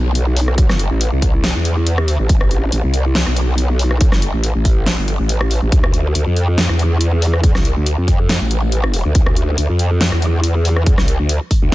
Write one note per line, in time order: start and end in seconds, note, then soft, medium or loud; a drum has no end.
0.00 0.68 B1 medium
0.15 closed hi-hat medium
0.37 open hi-hat loud
0.48 cross-stick soft
0.58 kick loud
0.58 closed hi-hat medium
0.69 0.89 G1 medium
0.69 cross-stick medium
0.69 snare soft
0.79 closed hi-hat medium
0.91 1.10 A1 loud
1.01 closed hi-hat medium
1.12 1.53 C2 loud
1.22 kick medium
1.22 closed hi-hat medium
1.44 snare loud
1.44 closed hi-hat medium
1.55 1.99 E2 medium
1.65 closed hi-hat medium
1.87 closed hi-hat medium
1.98 2.17 D#2 medium
1.98 cross-stick medium
2.08 open hi-hat loud
2.19 2.28 A1 medium
2.29 2.71 A1 loud
2.29 kick loud
2.29 closed hi-hat medium
2.41 cross-stick medium
2.51 closed hi-hat medium
2.72 2.82 A1 loud
2.72 closed hi-hat medium
2.84 3.25 C2 loud
2.94 closed hi-hat medium
3.15 snare loud
3.15 closed hi-hat medium
3.26 4.10 B1 loud
3.26 cross-stick medium
3.36 closed hi-hat medium
3.58 closed hi-hat medium
3.79 open hi-hat medium
3.91 cross-stick medium
4.01 kick loud
4.01 closed hi-hat medium
4.12 4.32 G1 loud
4.12 cross-stick medium
4.12 snare soft
4.22 closed hi-hat medium
4.34 4.53 A1 loud
4.44 closed hi-hat medium
4.55 4.96 A1 loud
4.65 kick medium
4.65 open hi-hat medium
4.86 snare loud
4.86 closed hi-hat medium
4.98 5.17 G1 loud
5.08 closed hi-hat medium
5.19 5.60 A1 loud
5.29 closed hi-hat medium
5.41 cross-stick medium
5.51 open hi-hat medium
5.62 5.71 A1 loud
5.72 6.13 D2 loud
5.72 kick loud
5.72 closed hi-hat medium
5.84 cross-stick medium
5.94 closed hi-hat medium
6.15 6.25 D2 loud
6.15 closed hi-hat medium
6.26 6.67 F2 loud
6.36 closed hi-hat medium
6.58 snare loud
6.58 closed hi-hat medium
6.69 7.53 E2 loud
6.69 cross-stick medium
6.79 closed hi-hat medium
7.01 closed hi-hat medium
7.22 open hi-hat medium
7.34 cross-stick medium
7.44 kick loud
7.44 closed hi-hat medium
7.55 7.75 C2 loud
7.55 cross-stick medium
7.55 snare soft
7.65 closed hi-hat medium
7.76 7.96 D2 loud
7.86 closed hi-hat medium
7.98 8.39 F2 loud
8.08 kick medium
8.08 closed hi-hat medium
8.29 snare loud
8.29 closed hi-hat medium
8.41 9.03 A1 loud
8.51 closed hi-hat medium
8.72 closed hi-hat medium
8.84 cross-stick medium
8.94 open hi-hat medium
9.05 9.13 D2 medium
9.15 9.56 D2 loud
9.15 kick loud
9.15 closed hi-hat medium
9.26 cross-stick medium
9.36 closed hi-hat medium
9.58 9.67 D2 loud
9.58 closed hi-hat medium
9.69 10.10 F2 loud
9.79 closed hi-hat medium
10.01 snare loud
10.01 closed hi-hat medium
10.12 10.96 E2 loud
10.12 cross-stick medium
10.22 closed hi-hat medium
10.44 closed hi-hat medium
10.65 open hi-hat medium
10.76 cross-stick medium
10.86 kick loud
10.86 closed hi-hat medium
10.98 11.17 C2 loud
10.98 cross-stick medium
10.98 snare soft
11.08 closed hi-hat medium
11.19 11.39 D2 medium
11.29 closed hi-hat medium
11.51 kick medium
11.51 open hi-hat medium
11.62 11.75 D2 loud